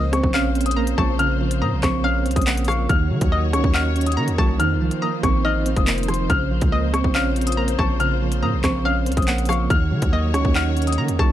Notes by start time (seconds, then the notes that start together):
Already playing: C#2 C#3 F3 A#3 F4 C5 D#5
0.12 C4 C#6, cross-stick, closed hi-hat
0.23 A#1, kick
0.34 C#4 F5 F6, clap
0.55 C4, closed hi-hat
0.61 closed hi-hat
0.66 D#6, closed hi-hat
0.71 closed hi-hat
0.77 A#3 A#5
0.87 closed hi-hat
0.98 A#1 F3 A5 C#6, kick, cross-stick
1.19 C#3 F6, closed hi-hat
1.41 F3
1.51 closed hi-hat
1.62 A#2 A#3 A#5 D#6
1.72 A#1
1.83 A#1 C4 C#6, kick, cross-stick, clap, closed hi-hat
2.04 C#4 F5 F6
2.26 C2 C4, closed hi-hat
2.31 closed hi-hat
2.36 A#1 D#6, kick, closed hi-hat
2.42 closed hi-hat
2.47 A#3 F#5, clap, closed hi-hat
2.57 closed hi-hat
2.65 F3 F5 C#6, cross-stick, closed hi-hat, open hi-hat
2.72 closed hi-hat
2.89 D#2 D#3 F#4 C#5 F6, kick, closed hi-hat
3.10 D#3 F#3
3.21 D#2, kick, closed hi-hat
3.32 A#3 D#5 D#6
3.53 C#2 C#4 C#6, cross-stick, closed hi-hat
3.64 D#2, kick
3.74 D#4 F#5 F6, clap
3.96 C#4, closed hi-hat
4.01 closed hi-hat
4.06 D#6, closed hi-hat
4.12 closed hi-hat
4.17 D#3 A#3 A#5
4.28 D#2, closed hi-hat
4.38 C2 F#3 A5 C#6, kick, cross-stick
4.60 F2 D#3 F4 C5 F6, closed hi-hat
4.76 C2
4.80 F3
4.91 closed hi-hat
5.02 A#3 A#5 D#6
5.23 A1 C4 C#6, kick, cross-stick, closed hi-hat
5.45 D#4 D#5 F6
5.66 C4, closed hi-hat
5.77 F1 D#6, kick, closed hi-hat
5.87 A#3, clap, closed hi-hat
5.98 closed hi-hat
6.03 closed hi-hat
6.08 F3 C6, cross-stick, closed hi-hat
6.14 closed hi-hat
6.30 A#1 C#3 F4 F6, kick, closed hi-hat
6.51 F3
6.61 C#2, kick, closed hi-hat
6.72 A#3 D#5 D#6
6.93 C4 C#6, cross-stick, closed hi-hat
7.04 A#1, kick
7.15 C#4 F5 F6, clap
7.36 C4, closed hi-hat
7.41 closed hi-hat
7.47 D#6, closed hi-hat
7.52 closed hi-hat
7.57 A#3 A#5
7.68 closed hi-hat
7.79 A#1 F3 A5 C#6, kick, cross-stick
8.00 C#3 F6, closed hi-hat
8.22 F3
8.32 closed hi-hat
8.43 A#2 A#3 A#5 D#6
8.53 A#1
8.64 A#1 C4 C#6, kick, cross-stick, clap, closed hi-hat
8.85 C#4 F5 F6
9.06 C2 C4, closed hi-hat
9.12 closed hi-hat
9.17 A#1 D#6, kick, closed hi-hat
9.22 closed hi-hat
9.28 A#3 F#5, clap, closed hi-hat
9.38 closed hi-hat
9.45 F3 F5 C#6, cross-stick, closed hi-hat, open hi-hat
9.53 closed hi-hat
9.70 D#2 D#3 A#3 F#4 C#5 F6, kick, closed hi-hat
9.91 D#3 F#3
10.02 D#2, kick, closed hi-hat
10.13 A#3 D#5 D#6
10.34 C#2 C#4 C#6, cross-stick, closed hi-hat
10.45 D#2, kick
10.55 D#4 F#5 F6, clap
10.77 C#4, closed hi-hat
10.82 closed hi-hat
10.87 D#6, closed hi-hat
10.93 closed hi-hat
10.98 D#3 A#3 A#5
11.08 D#2, closed hi-hat
11.19 C2 F#3 A5 C#6, kick, cross-stick